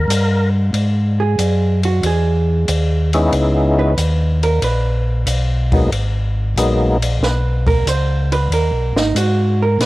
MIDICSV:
0, 0, Header, 1, 5, 480
1, 0, Start_track
1, 0, Key_signature, 5, "minor"
1, 0, Tempo, 647948
1, 543, Time_signature, 4, 2, 24, 8
1, 7302, End_track
2, 0, Start_track
2, 0, Title_t, "Hollow-body jazz guitar"
2, 0, Program_c, 0, 26
2, 889, Note_on_c, 0, 68, 78
2, 1332, Note_off_c, 0, 68, 0
2, 1371, Note_on_c, 0, 66, 78
2, 1508, Note_off_c, 0, 66, 0
2, 1529, Note_on_c, 0, 68, 78
2, 2298, Note_off_c, 0, 68, 0
2, 2808, Note_on_c, 0, 71, 98
2, 3252, Note_off_c, 0, 71, 0
2, 3285, Note_on_c, 0, 70, 81
2, 3424, Note_off_c, 0, 70, 0
2, 3440, Note_on_c, 0, 71, 79
2, 4213, Note_off_c, 0, 71, 0
2, 5364, Note_on_c, 0, 71, 82
2, 5675, Note_off_c, 0, 71, 0
2, 5686, Note_on_c, 0, 70, 89
2, 5824, Note_off_c, 0, 70, 0
2, 5842, Note_on_c, 0, 72, 94
2, 6153, Note_off_c, 0, 72, 0
2, 6168, Note_on_c, 0, 71, 96
2, 6305, Note_off_c, 0, 71, 0
2, 6323, Note_on_c, 0, 70, 81
2, 6634, Note_off_c, 0, 70, 0
2, 6645, Note_on_c, 0, 63, 46
2, 6783, Note_off_c, 0, 63, 0
2, 6798, Note_on_c, 0, 66, 75
2, 7111, Note_off_c, 0, 66, 0
2, 7130, Note_on_c, 0, 70, 89
2, 7265, Note_off_c, 0, 70, 0
2, 7273, Note_on_c, 0, 71, 88
2, 7302, Note_off_c, 0, 71, 0
2, 7302, End_track
3, 0, Start_track
3, 0, Title_t, "Tonewheel organ"
3, 0, Program_c, 1, 16
3, 0, Note_on_c, 1, 70, 92
3, 370, Note_off_c, 1, 70, 0
3, 2327, Note_on_c, 1, 56, 61
3, 2327, Note_on_c, 1, 64, 67
3, 2329, Note_on_c, 1, 59, 57
3, 2332, Note_on_c, 1, 61, 61
3, 2334, Note_on_c, 1, 63, 75
3, 2920, Note_off_c, 1, 56, 0
3, 2920, Note_off_c, 1, 64, 0
3, 2921, Note_off_c, 1, 59, 0
3, 2922, Note_off_c, 1, 61, 0
3, 2923, Note_off_c, 1, 63, 0
3, 4245, Note_on_c, 1, 58, 71
3, 4246, Note_on_c, 1, 54, 71
3, 4248, Note_on_c, 1, 56, 68
3, 4248, Note_on_c, 1, 63, 81
3, 4250, Note_on_c, 1, 59, 71
3, 4373, Note_off_c, 1, 58, 0
3, 4374, Note_off_c, 1, 54, 0
3, 4375, Note_off_c, 1, 56, 0
3, 4375, Note_off_c, 1, 63, 0
3, 4376, Note_off_c, 1, 59, 0
3, 4871, Note_on_c, 1, 54, 67
3, 4873, Note_on_c, 1, 56, 60
3, 4873, Note_on_c, 1, 58, 62
3, 4878, Note_on_c, 1, 63, 76
3, 4879, Note_on_c, 1, 59, 58
3, 5164, Note_off_c, 1, 54, 0
3, 5165, Note_off_c, 1, 56, 0
3, 5166, Note_off_c, 1, 58, 0
3, 5168, Note_off_c, 1, 63, 0
3, 5169, Note_off_c, 1, 59, 0
3, 7302, End_track
4, 0, Start_track
4, 0, Title_t, "Tonewheel organ"
4, 0, Program_c, 2, 16
4, 57, Note_on_c, 2, 43, 95
4, 526, Note_off_c, 2, 43, 0
4, 541, Note_on_c, 2, 44, 80
4, 1007, Note_off_c, 2, 44, 0
4, 1023, Note_on_c, 2, 42, 93
4, 1489, Note_off_c, 2, 42, 0
4, 1502, Note_on_c, 2, 40, 85
4, 1968, Note_off_c, 2, 40, 0
4, 1985, Note_on_c, 2, 39, 89
4, 2450, Note_off_c, 2, 39, 0
4, 2463, Note_on_c, 2, 37, 93
4, 2929, Note_off_c, 2, 37, 0
4, 2944, Note_on_c, 2, 39, 96
4, 3409, Note_off_c, 2, 39, 0
4, 3423, Note_on_c, 2, 34, 98
4, 3889, Note_off_c, 2, 34, 0
4, 3899, Note_on_c, 2, 35, 94
4, 4366, Note_off_c, 2, 35, 0
4, 4380, Note_on_c, 2, 32, 93
4, 4847, Note_off_c, 2, 32, 0
4, 4861, Note_on_c, 2, 34, 98
4, 5327, Note_off_c, 2, 34, 0
4, 5339, Note_on_c, 2, 35, 90
4, 5806, Note_off_c, 2, 35, 0
4, 5821, Note_on_c, 2, 37, 93
4, 6287, Note_off_c, 2, 37, 0
4, 6296, Note_on_c, 2, 39, 90
4, 6454, Note_off_c, 2, 39, 0
4, 6454, Note_on_c, 2, 35, 55
4, 6614, Note_on_c, 2, 32, 65
4, 6618, Note_off_c, 2, 35, 0
4, 6766, Note_off_c, 2, 32, 0
4, 6776, Note_on_c, 2, 44, 91
4, 7244, Note_off_c, 2, 44, 0
4, 7253, Note_on_c, 2, 46, 86
4, 7302, Note_off_c, 2, 46, 0
4, 7302, End_track
5, 0, Start_track
5, 0, Title_t, "Drums"
5, 74, Note_on_c, 9, 44, 68
5, 74, Note_on_c, 9, 51, 79
5, 148, Note_off_c, 9, 44, 0
5, 148, Note_off_c, 9, 51, 0
5, 546, Note_on_c, 9, 51, 57
5, 620, Note_off_c, 9, 51, 0
5, 1027, Note_on_c, 9, 44, 52
5, 1027, Note_on_c, 9, 51, 66
5, 1101, Note_off_c, 9, 44, 0
5, 1101, Note_off_c, 9, 51, 0
5, 1357, Note_on_c, 9, 51, 49
5, 1431, Note_off_c, 9, 51, 0
5, 1505, Note_on_c, 9, 51, 59
5, 1579, Note_off_c, 9, 51, 0
5, 1984, Note_on_c, 9, 44, 62
5, 1984, Note_on_c, 9, 51, 71
5, 2058, Note_off_c, 9, 44, 0
5, 2058, Note_off_c, 9, 51, 0
5, 2318, Note_on_c, 9, 51, 48
5, 2392, Note_off_c, 9, 51, 0
5, 2462, Note_on_c, 9, 51, 60
5, 2536, Note_off_c, 9, 51, 0
5, 2945, Note_on_c, 9, 44, 59
5, 2945, Note_on_c, 9, 51, 66
5, 3019, Note_off_c, 9, 44, 0
5, 3019, Note_off_c, 9, 51, 0
5, 3280, Note_on_c, 9, 51, 49
5, 3354, Note_off_c, 9, 51, 0
5, 3423, Note_on_c, 9, 51, 63
5, 3497, Note_off_c, 9, 51, 0
5, 3901, Note_on_c, 9, 44, 70
5, 3901, Note_on_c, 9, 51, 76
5, 3975, Note_off_c, 9, 44, 0
5, 3975, Note_off_c, 9, 51, 0
5, 4237, Note_on_c, 9, 51, 50
5, 4238, Note_on_c, 9, 36, 52
5, 4311, Note_off_c, 9, 51, 0
5, 4312, Note_off_c, 9, 36, 0
5, 4387, Note_on_c, 9, 51, 58
5, 4461, Note_off_c, 9, 51, 0
5, 4869, Note_on_c, 9, 44, 55
5, 4869, Note_on_c, 9, 51, 73
5, 4943, Note_off_c, 9, 44, 0
5, 4943, Note_off_c, 9, 51, 0
5, 5201, Note_on_c, 9, 51, 75
5, 5275, Note_off_c, 9, 51, 0
5, 5354, Note_on_c, 9, 38, 40
5, 5428, Note_off_c, 9, 38, 0
5, 5679, Note_on_c, 9, 36, 56
5, 5681, Note_on_c, 9, 51, 52
5, 5753, Note_off_c, 9, 36, 0
5, 5755, Note_off_c, 9, 51, 0
5, 5830, Note_on_c, 9, 44, 68
5, 5830, Note_on_c, 9, 51, 70
5, 5904, Note_off_c, 9, 44, 0
5, 5904, Note_off_c, 9, 51, 0
5, 6162, Note_on_c, 9, 51, 45
5, 6236, Note_off_c, 9, 51, 0
5, 6311, Note_on_c, 9, 51, 57
5, 6385, Note_off_c, 9, 51, 0
5, 6641, Note_on_c, 9, 38, 58
5, 6715, Note_off_c, 9, 38, 0
5, 6785, Note_on_c, 9, 44, 53
5, 6785, Note_on_c, 9, 51, 77
5, 6859, Note_off_c, 9, 44, 0
5, 6859, Note_off_c, 9, 51, 0
5, 7262, Note_on_c, 9, 51, 70
5, 7265, Note_on_c, 9, 38, 41
5, 7302, Note_off_c, 9, 38, 0
5, 7302, Note_off_c, 9, 51, 0
5, 7302, End_track
0, 0, End_of_file